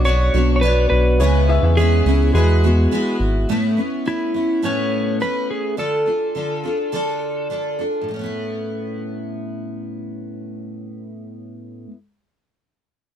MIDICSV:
0, 0, Header, 1, 5, 480
1, 0, Start_track
1, 0, Key_signature, 3, "major"
1, 0, Tempo, 574163
1, 998, Time_signature, 4, 2, 24, 8
1, 10993, End_track
2, 0, Start_track
2, 0, Title_t, "Electric slide guitar"
2, 0, Program_c, 0, 29
2, 43, Note_on_c, 0, 73, 93
2, 457, Note_off_c, 0, 73, 0
2, 467, Note_on_c, 0, 73, 55
2, 512, Note_on_c, 0, 71, 88
2, 523, Note_off_c, 0, 73, 0
2, 739, Note_off_c, 0, 71, 0
2, 749, Note_on_c, 0, 71, 96
2, 1481, Note_on_c, 0, 68, 101
2, 1493, Note_off_c, 0, 71, 0
2, 1953, Note_off_c, 0, 68, 0
2, 1963, Note_on_c, 0, 68, 75
2, 2643, Note_off_c, 0, 68, 0
2, 3407, Note_on_c, 0, 64, 86
2, 3889, Note_on_c, 0, 73, 78
2, 3893, Note_off_c, 0, 64, 0
2, 4359, Note_off_c, 0, 73, 0
2, 4362, Note_on_c, 0, 71, 91
2, 4602, Note_on_c, 0, 68, 75
2, 4604, Note_off_c, 0, 71, 0
2, 4839, Note_off_c, 0, 68, 0
2, 4843, Note_on_c, 0, 69, 76
2, 6245, Note_off_c, 0, 69, 0
2, 10993, End_track
3, 0, Start_track
3, 0, Title_t, "Upright piano"
3, 0, Program_c, 1, 0
3, 0, Control_c, 1, 64, 127
3, 0, Note_on_c, 1, 59, 58
3, 0, Note_on_c, 1, 62, 66
3, 0, Note_on_c, 1, 66, 61
3, 0, Note_on_c, 1, 73, 88
3, 0, Note_on_c, 1, 85, 75
3, 177, Note_off_c, 1, 59, 0
3, 179, Note_off_c, 1, 62, 0
3, 183, Note_off_c, 1, 66, 0
3, 185, Note_off_c, 1, 85, 0
3, 987, Note_on_c, 1, 59, 77
3, 996, Note_on_c, 1, 64, 69
3, 999, Note_on_c, 1, 68, 72
3, 1004, Note_off_c, 1, 73, 0
3, 1004, Note_on_c, 1, 73, 87
3, 1008, Control_c, 1, 64, 0
3, 1169, Control_c, 1, 64, 127
3, 1177, Note_off_c, 1, 59, 0
3, 1181, Note_off_c, 1, 64, 0
3, 1183, Note_off_c, 1, 68, 0
3, 1185, Note_off_c, 1, 73, 0
3, 1230, Note_on_c, 1, 59, 68
3, 1236, Note_on_c, 1, 64, 71
3, 1242, Note_on_c, 1, 68, 71
3, 1248, Note_on_c, 1, 76, 94
3, 1326, Note_off_c, 1, 59, 0
3, 1329, Note_off_c, 1, 64, 0
3, 1332, Note_off_c, 1, 68, 0
3, 1335, Note_off_c, 1, 76, 0
3, 1352, Note_on_c, 1, 59, 66
3, 1358, Note_on_c, 1, 64, 61
3, 1364, Note_on_c, 1, 68, 65
3, 1370, Note_on_c, 1, 76, 75
3, 1941, Note_off_c, 1, 64, 0
3, 1948, Note_on_c, 1, 56, 84
3, 1953, Note_off_c, 1, 59, 0
3, 1953, Note_on_c, 1, 64, 69
3, 1958, Note_off_c, 1, 68, 0
3, 1960, Note_on_c, 1, 66, 72
3, 1961, Note_off_c, 1, 76, 0
3, 1963, Note_on_c, 1, 71, 87
3, 1966, Control_c, 1, 64, 0
3, 2091, Control_c, 1, 64, 127
3, 2717, Note_off_c, 1, 56, 0
3, 2720, Note_off_c, 1, 64, 0
3, 2723, Note_off_c, 1, 66, 0
3, 2725, Note_off_c, 1, 71, 0
3, 2924, Control_c, 1, 64, 0
3, 10993, End_track
4, 0, Start_track
4, 0, Title_t, "Steel-string acoustic guitar"
4, 0, Program_c, 2, 25
4, 39, Note_on_c, 2, 59, 65
4, 48, Note_on_c, 2, 62, 70
4, 49, Note_on_c, 2, 66, 64
4, 56, Note_on_c, 2, 73, 79
4, 273, Note_off_c, 2, 73, 0
4, 278, Note_off_c, 2, 66, 0
4, 279, Note_off_c, 2, 59, 0
4, 282, Note_off_c, 2, 62, 0
4, 283, Note_on_c, 2, 73, 67
4, 288, Note_on_c, 2, 66, 60
4, 292, Note_on_c, 2, 62, 54
4, 296, Note_on_c, 2, 59, 48
4, 510, Note_off_c, 2, 59, 0
4, 515, Note_off_c, 2, 62, 0
4, 519, Note_off_c, 2, 66, 0
4, 520, Note_on_c, 2, 59, 62
4, 521, Note_off_c, 2, 73, 0
4, 525, Note_on_c, 2, 62, 76
4, 529, Note_on_c, 2, 66, 76
4, 534, Note_on_c, 2, 73, 73
4, 1001, Note_off_c, 2, 62, 0
4, 1001, Note_on_c, 2, 49, 69
4, 1002, Note_off_c, 2, 59, 0
4, 1003, Note_off_c, 2, 66, 0
4, 1005, Note_off_c, 2, 73, 0
4, 1006, Note_on_c, 2, 56, 73
4, 1007, Note_on_c, 2, 61, 65
4, 1009, Note_on_c, 2, 59, 80
4, 1014, Note_on_c, 2, 64, 96
4, 1469, Note_off_c, 2, 56, 0
4, 1475, Note_off_c, 2, 61, 0
4, 1478, Note_off_c, 2, 49, 0
4, 1479, Note_on_c, 2, 56, 63
4, 1485, Note_on_c, 2, 61, 67
4, 1488, Note_off_c, 2, 59, 0
4, 1491, Note_on_c, 2, 59, 72
4, 1493, Note_off_c, 2, 64, 0
4, 1496, Note_on_c, 2, 64, 71
4, 1713, Note_off_c, 2, 64, 0
4, 1717, Note_off_c, 2, 56, 0
4, 1720, Note_off_c, 2, 59, 0
4, 1720, Note_off_c, 2, 61, 0
4, 1723, Note_on_c, 2, 64, 67
4, 1730, Note_on_c, 2, 59, 57
4, 1738, Note_on_c, 2, 61, 51
4, 1958, Note_off_c, 2, 64, 0
4, 1959, Note_off_c, 2, 59, 0
4, 1963, Note_on_c, 2, 56, 67
4, 1966, Note_off_c, 2, 61, 0
4, 1969, Note_on_c, 2, 59, 70
4, 1972, Note_on_c, 2, 66, 69
4, 1977, Note_on_c, 2, 64, 72
4, 2190, Note_off_c, 2, 64, 0
4, 2198, Note_off_c, 2, 56, 0
4, 2198, Note_off_c, 2, 66, 0
4, 2200, Note_on_c, 2, 64, 58
4, 2201, Note_off_c, 2, 59, 0
4, 2208, Note_on_c, 2, 66, 61
4, 2212, Note_on_c, 2, 59, 50
4, 2217, Note_on_c, 2, 56, 51
4, 2426, Note_off_c, 2, 56, 0
4, 2432, Note_off_c, 2, 59, 0
4, 2436, Note_off_c, 2, 64, 0
4, 2436, Note_off_c, 2, 66, 0
4, 2436, Note_on_c, 2, 56, 67
4, 2442, Note_on_c, 2, 59, 71
4, 2446, Note_on_c, 2, 66, 70
4, 2452, Note_on_c, 2, 64, 62
4, 2914, Note_off_c, 2, 56, 0
4, 2916, Note_on_c, 2, 45, 70
4, 2918, Note_off_c, 2, 66, 0
4, 2919, Note_off_c, 2, 59, 0
4, 2920, Note_on_c, 2, 57, 78
4, 2922, Note_on_c, 2, 61, 73
4, 2924, Note_off_c, 2, 64, 0
4, 2924, Note_on_c, 2, 59, 80
4, 2927, Note_on_c, 2, 64, 81
4, 3140, Note_off_c, 2, 64, 0
4, 3149, Note_off_c, 2, 59, 0
4, 3150, Note_on_c, 2, 64, 49
4, 3154, Note_off_c, 2, 45, 0
4, 3156, Note_off_c, 2, 57, 0
4, 3157, Note_off_c, 2, 61, 0
4, 3159, Note_on_c, 2, 59, 46
4, 3167, Note_on_c, 2, 61, 41
4, 3386, Note_off_c, 2, 61, 0
4, 3390, Note_on_c, 2, 57, 47
4, 3391, Note_off_c, 2, 64, 0
4, 3393, Note_off_c, 2, 59, 0
4, 3396, Note_on_c, 2, 61, 47
4, 3403, Note_on_c, 2, 59, 51
4, 3408, Note_on_c, 2, 64, 56
4, 3620, Note_off_c, 2, 64, 0
4, 3630, Note_off_c, 2, 57, 0
4, 3630, Note_off_c, 2, 59, 0
4, 3630, Note_on_c, 2, 64, 48
4, 3633, Note_off_c, 2, 61, 0
4, 3640, Note_on_c, 2, 59, 37
4, 3647, Note_on_c, 2, 61, 37
4, 3863, Note_off_c, 2, 61, 0
4, 3866, Note_on_c, 2, 45, 70
4, 3868, Note_off_c, 2, 59, 0
4, 3870, Note_off_c, 2, 64, 0
4, 3871, Note_on_c, 2, 57, 67
4, 3873, Note_on_c, 2, 61, 64
4, 3878, Note_on_c, 2, 59, 77
4, 3879, Note_on_c, 2, 64, 69
4, 4343, Note_off_c, 2, 61, 0
4, 4344, Note_off_c, 2, 57, 0
4, 4347, Note_on_c, 2, 57, 50
4, 4348, Note_off_c, 2, 45, 0
4, 4348, Note_off_c, 2, 59, 0
4, 4353, Note_off_c, 2, 64, 0
4, 4353, Note_on_c, 2, 61, 53
4, 4358, Note_on_c, 2, 59, 52
4, 4363, Note_on_c, 2, 64, 60
4, 4822, Note_off_c, 2, 57, 0
4, 4825, Note_on_c, 2, 50, 56
4, 4826, Note_off_c, 2, 61, 0
4, 4829, Note_off_c, 2, 59, 0
4, 4829, Note_on_c, 2, 62, 58
4, 4833, Note_on_c, 2, 65, 69
4, 4834, Note_off_c, 2, 64, 0
4, 4837, Note_on_c, 2, 69, 68
4, 5055, Note_off_c, 2, 69, 0
4, 5065, Note_on_c, 2, 69, 41
4, 5066, Note_off_c, 2, 65, 0
4, 5068, Note_off_c, 2, 50, 0
4, 5070, Note_off_c, 2, 62, 0
4, 5076, Note_on_c, 2, 65, 44
4, 5079, Note_on_c, 2, 62, 35
4, 5303, Note_off_c, 2, 62, 0
4, 5307, Note_on_c, 2, 50, 54
4, 5308, Note_off_c, 2, 65, 0
4, 5308, Note_off_c, 2, 69, 0
4, 5313, Note_on_c, 2, 62, 51
4, 5318, Note_on_c, 2, 65, 55
4, 5322, Note_on_c, 2, 69, 54
4, 5537, Note_off_c, 2, 69, 0
4, 5547, Note_off_c, 2, 65, 0
4, 5547, Note_on_c, 2, 69, 47
4, 5549, Note_off_c, 2, 50, 0
4, 5553, Note_off_c, 2, 62, 0
4, 5557, Note_on_c, 2, 65, 43
4, 5563, Note_on_c, 2, 62, 40
4, 5782, Note_off_c, 2, 62, 0
4, 5784, Note_off_c, 2, 65, 0
4, 5787, Note_on_c, 2, 50, 73
4, 5790, Note_off_c, 2, 69, 0
4, 5792, Note_on_c, 2, 62, 74
4, 5794, Note_on_c, 2, 65, 76
4, 5799, Note_on_c, 2, 69, 79
4, 6259, Note_off_c, 2, 50, 0
4, 6266, Note_off_c, 2, 62, 0
4, 6269, Note_on_c, 2, 50, 52
4, 6274, Note_off_c, 2, 65, 0
4, 6276, Note_on_c, 2, 62, 60
4, 6282, Note_off_c, 2, 69, 0
4, 6284, Note_on_c, 2, 65, 55
4, 6285, Note_on_c, 2, 69, 58
4, 6501, Note_off_c, 2, 69, 0
4, 6510, Note_off_c, 2, 65, 0
4, 6511, Note_off_c, 2, 50, 0
4, 6511, Note_on_c, 2, 69, 46
4, 6515, Note_off_c, 2, 62, 0
4, 6520, Note_on_c, 2, 65, 41
4, 6528, Note_on_c, 2, 62, 42
4, 6700, Note_on_c, 2, 45, 54
4, 6752, Note_off_c, 2, 69, 0
4, 6757, Note_off_c, 2, 65, 0
4, 6759, Note_on_c, 2, 57, 54
4, 6761, Note_off_c, 2, 62, 0
4, 6804, Note_on_c, 2, 61, 58
4, 6848, Note_on_c, 2, 59, 55
4, 6886, Note_on_c, 2, 64, 60
4, 9903, Note_off_c, 2, 45, 0
4, 9933, Note_off_c, 2, 57, 0
4, 9955, Note_off_c, 2, 61, 0
4, 9977, Note_off_c, 2, 59, 0
4, 9996, Note_off_c, 2, 64, 0
4, 10993, End_track
5, 0, Start_track
5, 0, Title_t, "Analog synth bass"
5, 0, Program_c, 3, 38
5, 0, Note_on_c, 3, 35, 106
5, 249, Note_off_c, 3, 35, 0
5, 283, Note_on_c, 3, 35, 93
5, 726, Note_off_c, 3, 35, 0
5, 761, Note_on_c, 3, 35, 100
5, 998, Note_on_c, 3, 37, 117
5, 1011, Note_off_c, 3, 35, 0
5, 1328, Note_off_c, 3, 37, 0
5, 1359, Note_on_c, 3, 40, 100
5, 1688, Note_off_c, 3, 40, 0
5, 1718, Note_on_c, 3, 37, 104
5, 1937, Note_off_c, 3, 37, 0
5, 1957, Note_on_c, 3, 40, 114
5, 2401, Note_off_c, 3, 40, 0
5, 2673, Note_on_c, 3, 32, 86
5, 2893, Note_off_c, 3, 32, 0
5, 10993, End_track
0, 0, End_of_file